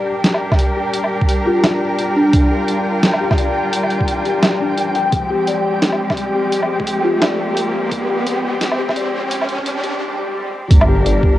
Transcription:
Already playing: G3 D4 G4 A#4 D5 G5, riser
0.24 snare, closed hi-hat
0.34 low woodblock
0.52 kick, snare, low woodblock
0.59 closed hi-hat
0.77 G4
0.94 closed hi-hat
1.04 low woodblock
1.22 kick
1.29 closed hi-hat
1.46 F4 G4
1.64 D5, snare, closed hi-hat, low woodblock
1.99 closed hi-hat
2.16 D4
2.26 D4
2.33 F4, kick, closed hi-hat
2.51 G4
2.68 closed hi-hat
3.03 snare, closed hi-hat
3.13 low woodblock
3.21 G4
3.31 kick, snare, low woodblock
3.38 D5, closed hi-hat
3.73 closed hi-hat
3.83 low woodblock
3.90 closed hi-hat
4.01 kick
4.08 closed hi-hat
4.25 G4, closed hi-hat
4.43 snare, closed hi-hat, low woodblock
4.60 D4
4.78 closed hi-hat
4.95 G5, closed hi-hat
5.12 F3 G#3 C4 G4, kick, closed hi-hat
5.30 G4
5.47 D5, closed hi-hat
5.82 snare, closed hi-hat
5.92 low woodblock
6.10 kick, snare, low woodblock
6.17 closed hi-hat
6.35 G4
6.52 closed hi-hat
6.62 low woodblock
6.80 kick
6.87 closed hi-hat
7.04 F4 G4
7.22 G4 D5, snare, closed hi-hat, low woodblock
7.57 closed hi-hat
7.91 kick, closed hi-hat
8.09 G4
8.27 closed hi-hat
8.61 snare, closed hi-hat
8.72 low woodblock
8.79 G4
8.89 kick, snare, low woodblock
8.96 D5, closed hi-hat
9.31 closed hi-hat
9.42 low woodblock
9.49 closed hi-hat
9.59 kick
9.66 closed hi-hat
9.84 G4, closed hi-hat
10.01 swell
10.71 G1 G3 D4 G4 A#4, kick, closed hi-hat, sub drop
10.81 low woodblock
10.88 G4
11.06 D5, closed hi-hat
11.23 kick

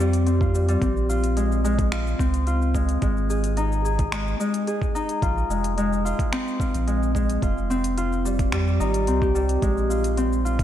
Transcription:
Already playing: F2 C4 F4
0.00 G3, cabasa
0.13 closed hi-hat, cabasa
0.27 C4, closed hi-hat, cabasa
0.41 F4, kick, cabasa
0.54 G3, cabasa
0.69 G3, closed hi-hat, cabasa
0.81 A#1 C4, kick, closed hi-hat, cabasa
0.97 cabasa
1.09 F4, cabasa
1.24 closed hi-hat, cabasa
1.37 G#3, closed hi-hat, cabasa
1.52 cabasa
1.64 G#3, cabasa
1.79 kick, closed hi-hat, cabasa
1.92 F4, finger snap, closed hi-hat, cabasa
2.07 cabasa
2.19 C#2 C4, kick, cabasa
2.34 closed hi-hat, cabasa
2.47 F4, closed hi-hat, cabasa
2.62 cabasa
2.74 G#3, kick, cabasa
2.89 closed hi-hat, cabasa
3.02 G#1 G#3, kick, closed hi-hat, cabasa
3.17 cabasa
3.30 G#4, cabasa
3.44 closed hi-hat, cabasa
3.57 D#4, closed hi-hat, cabasa
3.72 cabasa
3.85 G#4, cabasa
3.99 kick, closed hi-hat, cabasa
4.12 G#3, finger snap, closed hi-hat, cabasa
4.27 cabasa
4.40 G#3, cabasa
4.54 closed hi-hat, cabasa
4.67 G#4, closed hi-hat, cabasa
4.82 kick, cabasa
4.95 D#4, cabasa
5.09 closed hi-hat, cabasa
5.22 A#1 F4, kick, closed hi-hat, cabasa
5.38 cabasa
5.49 F1 G#3, cabasa
5.64 closed hi-hat, cabasa
5.78 G#3, closed hi-hat, cabasa
5.93 cabasa
6.05 F4, cabasa
6.19 kick, closed hi-hat, cabasa
6.33 C4, finger snap, closed hi-hat, cabasa
6.48 cabasa
6.60 F4, kick, cabasa
6.74 A#1, closed hi-hat, cabasa
6.87 G#3, closed hi-hat, cabasa
7.03 cabasa
7.15 G#3, kick, cabasa
7.30 closed hi-hat, cabasa
7.42 F1 F4, kick, closed hi-hat, cabasa
7.58 cabasa
7.70 C4, cabasa
7.84 closed hi-hat, cabasa
7.97 F4, closed hi-hat, cabasa
8.13 cabasa
8.25 G3, cabasa
8.39 kick, closed hi-hat, cabasa
8.52 F2 G3, finger snap, kick, closed hi-hat, cabasa
8.68 cabasa
8.80 G#1 D#4, cabasa
8.94 closed hi-hat, cabasa
9.07 C2 C4, closed hi-hat, cabasa
9.22 G4, kick, cabasa
9.35 G3, cabasa
9.49 closed hi-hat, cabasa
9.62 A#1 G#3, kick, closed hi-hat, cabasa
9.78 cabasa
9.90 F4, cabasa
10.04 closed hi-hat, cabasa
10.17 C4, closed hi-hat, cabasa
10.33 cabasa
10.45 F4, cabasa
10.59 kick, closed hi-hat, cabasa

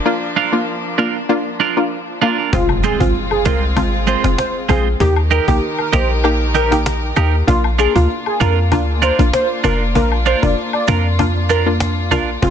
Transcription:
Already playing: F3 A#3 D4
0.05 A#3 D4 F4
0.36 D4 F4 A#4
0.52 A#3 D4 F4
0.98 A#3 D4 F4 A#4
1.29 A#3 D4 F4
1.60 D4 F4 A#4
1.77 A#3 D4 F4
2.22 A#3 D4 F4 A#4
2.38 D4 F4 A#4
2.53 F1 G#3 C4 F4, cajon bass, impact
2.69 cajon slap, high woodblock
2.84 G#3 C4 F4 G#4, cabasa
3.00 G#1 G#3 C4 F4, cajon bass
3.15 cajon slap
3.31 G#4, cajon slap, high woodblock
3.45 C2 G#3 C4 F4 A#4, cajon bass, cajon slap, cabasa
3.76 G#1 G#3 C4 F4, cajon bass, high woodblock
3.93 cajon slap
4.07 G#3 C4 F4 C5, cabasa
4.24 F1 G#3 C4 F4, cajon slap
4.38 C5, cajon slap
4.69 A#1 G#3 C4 F4 G#4, cajon bass, cabasa, high woodblock
5.00 D#2 D#3 A#3 D#4 G4 A#4, cajon bass
5.16 cajon slap, high woodblock
5.31 D#4 G4 A#4, cajon slap, cabasa
5.47 A#1 A#3 D#4 G4, cajon bass
5.78 A#4, cajon slap, high woodblock
5.93 A#1 A#3 D#4 G4 A#4 C5, cajon bass, cajon slap, cabasa
6.24 A#3 D#4 G4, cajon slap, high woodblock
6.41 cajon slap
6.55 D#4 G4 A#4, cajon slap, cabasa
6.71 A#3 D#4 G4, cajon slap
6.86 cajon slap
7.16 D#2 A#3 D#4 G4 A#4, cabasa, high woodblock
7.47 A#1 A#3 D4 F4, cajon bass
7.64 cajon slap, high woodblock
7.79 D4 F4 G#4 A#4, cabasa
7.95 D2 A#3 D4 F4, cajon bass
8.10 cajon slap
8.26 G#4, cajon slap, high woodblock
8.40 F2 A#3 D4 F4 A#4, cajon bass, cajon slap, cabasa
8.72 D2 A#3 D4 F4, cajon bass, high woodblock
8.88 cajon slap
9.02 D4 F4 A#4 C5, cajon slap, cabasa
9.19 A#1 A#3 D4 F4, cajon slap
9.33 C5, cajon slap
9.64 F1 A#3 D4 F4 A#4, cajon bass, cabasa, high woodblock
9.95 A#1 A#3 D4 F4 A#4, cajon bass
10.12 high woodblock
10.26 D4 F4 A#4 C5, cajon slap, cabasa
10.42 F1 A#3 D4 F4 D5, cajon bass
10.57 cajon slap
10.73 D5, cajon slap, high woodblock
10.87 F2 A#3 D4 F4 A#4, cajon bass, cajon slap, cabasa
11.19 A#3 D4 F4, cajon bass, high woodblock
11.35 cajon slap
11.49 D4 F4 A#4, cajon slap, cabasa
11.66 A#3 D4 F4
11.80 cajon slap
12.11 A#1 A#3 D4 F4 A#4, cajon bass, cabasa, high woodblock
12.42 F1 G#3 C4 F4, cajon bass

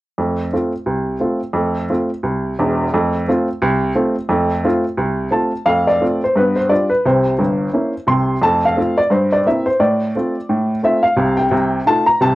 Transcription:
0.18 F2 A3
0.53 A3 C4 F4
0.86 C2
1.20 A3 C4 F4
1.53 F2 A3
1.90 A3 C4 F4
2.23 C2
2.59 E1 E2
2.94 F2 A3
3.28 A3 C4 F4
3.62 C2
3.95 A3 C4 F4
4.29 F2 A3
4.64 A3 C4 F4
4.97 C2
5.31 A3 C4 F4 A5
5.66 F2 A3 F5
5.87 D5
6.01 A3 C4 F4
6.24 C5
6.36 G2 B3 B4
6.56 C5
6.69 G3 D4 F4 D5
6.90 B4
7.05 C2 C3 C5
7.39 G1 G2
7.74 A#3 C#4 E4
8.07 C2 C3 C6
8.42 F2 A3 A5
8.65 F5
8.76 A3 C4 F4
8.98 D5
9.10 G2 C5
9.32 D5
9.46 A#3 C4 E4 E5
9.66 C5
9.80 A2 D5
10.15 A3 C4 F4
10.49 A2
10.83 A3 C4 F4 E5
11.03 F5
11.16 C2 C3
11.37 G5
11.51 C2 C3
11.86 A3 D#4 F4 A5
12.06 A#5
12.21 C2 C3 A5

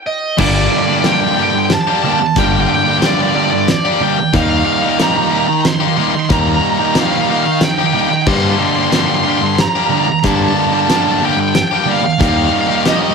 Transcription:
0.07 D#5
0.37 G1 G2 D3 G3 A#3 D4 G4 D5, kick, crash
0.47 D5
0.55 D5
0.62 D5
0.70 D5
0.78 D5
0.85 G3 A#3 D4 G4 D5
0.93 D5
0.99 D5
1.04 G2 D3 G3 A#3 D4 G4 G5, snare, closed hi-hat
1.13 G5
1.20 G5
1.28 G5
1.36 D3 G3 A#3 D4 G4 G5
1.43 G5
1.50 G5
1.54 G5, muted distorted electric guitar stroke
1.66 G5
1.70 A5, snare, closed hi-hat
1.81 A5
1.87 G3 A#3 D4 G4 A5
1.96 A5
2.03 D3 G3 A#3 D4 G4 A5
2.12 A5
2.18 A5, muted distorted electric guitar stroke
2.27 A5
2.36 G1 G2 D3 G3 A#3 D4 G4 G5, kick, closed hi-hat
2.45 G5
2.52 G5
2.60 G5
2.68 G5
2.75 G5
2.83 D4 G4 G5
2.88 G3 A#3 G5
2.98 G2 G5
3.02 D3 G3 A#3 D4 G4 D5, snare, closed hi-hat
3.14 D5
3.21 D5
3.28 D5
3.35 D3 G3 A#3 D4 G4 D5
3.44 D5
3.51 D5, muted distorted electric guitar stroke
3.59 D5
3.68 D5, snare, closed hi-hat
3.85 G3 A#3 D4 G4
4.01 D3 G3 A#3 D4 G4 G5
4.19 muted distorted electric guitar stroke
4.33 D#2 D#3 G3 A#3 D#4 G4 F5, kick, closed hi-hat
4.43 F5
4.50 F5
4.57 F5
4.65 F5
4.73 F5
4.82 G3 A#3 D#4 G4 F5
4.89 F5
4.99 D#3 G3 A#3 D#4 G4 A#5, snare, closed hi-hat
5.09 A#5
5.16 A#5
5.24 A#5
5.31 D#3 G3 A#3 D#4 G4 A#5
5.38 A#5
5.47 A#5, muted distorted electric guitar stroke
5.53 A#5
5.61 A#5
5.65 C6, snare, closed hi-hat
5.75 C6
5.80 A#3 D#4 G4 C6
5.88 C6
5.96 D#3 G3 A#3 D#4 G4 C6
6.04 C6
6.11 C6, muted distorted electric guitar stroke
6.20 C6
6.25 C6
6.29 D#2 D#3 G3 A#3 D#4 G4 A#5, kick, closed hi-hat
6.39 A#5
6.47 A#5
6.55 A#5
6.62 A#5
6.70 A#5
6.78 G3 A#3 D#4 G4 A#5
6.85 A#5
6.95 D#3 G3 A#3 D#4 G4, snare, closed hi-hat
7.00 F5
7.08 F5
7.15 F5
7.22 F5
7.29 D#3 G3 A#3 D#4 G4 F5
7.37 F5
7.44 F5, muted distorted electric guitar stroke
7.52 F5
7.61 G5, snare, closed hi-hat
7.71 G5
7.78 A#3 D#4 G4 G5
7.86 G5
7.93 D#3 G3 A#3 D#4 G4 G5
8.01 G5
8.09 G5, muted distorted electric guitar stroke
8.16 G5
8.22 G5
8.26 G2 D3 G3 A#3 D4 G4 C6, kick, crash
8.37 C6
8.44 C6
8.52 C6
8.61 C6
8.68 C6
8.76 G3 A#3 D4 G4 C6
8.84 C6
8.91 G2 D3 G3 A#3 D4 C6, snare, closed hi-hat
8.96 G4 C6
9.07 C6
9.15 C6
9.24 D3 G3 A#3 D4 C6
9.29 G4 C6
9.38 C6
9.44 C6, muted distorted electric guitar stroke
9.55 C6, snare, closed hi-hat
9.60 A#5
9.68 A#5
9.75 G3 A#3 D4 G4 A#5
9.84 A#5
9.89 D3 G3 A#3 A#5
9.94 D4 G4
9.98 A#5
10.04 A#5, muted distorted electric guitar stroke
10.12 A#5
10.20 A#5
10.24 G2 D3 G3 A#3 D4 G4 A5, kick, closed hi-hat
10.36 A5
10.42 A5
10.49 A5
10.57 A5
10.65 A5
10.73 G3 A#3 D4 G4 A5
10.80 A5
10.88 G2 D3 G3 A#3 D4 G4 A5, snare, closed hi-hat
10.95 A5
11.03 A5
11.11 A5
11.19 D3 G3 A5
11.23 A#3 D4 G4 G5
11.33 G5
11.39 G5, muted distorted electric guitar stroke
11.48 G5
11.55 G5, snare, closed hi-hat
11.62 G5
11.68 G4 G5
11.72 G3 A#3 D4 G5
11.84 D3 G3 A#3 G5
11.89 D4 G4 F5
11.99 F5
12.04 F5, muted distorted electric guitar stroke
12.13 F5
12.20 D#2 D#3 G3 A#3 D#4 G4 F5, kick, closed hi-hat
12.29 F5
12.37 F5
12.45 F5
12.53 F5
12.61 F5
12.68 G3 A#3 D#4 G4 F5
12.75 F5
12.85 D#3 G3 A#3 D#4 G4 D#5, snare, closed hi-hat
12.95 D#5
13.02 D#5
13.10 D#5

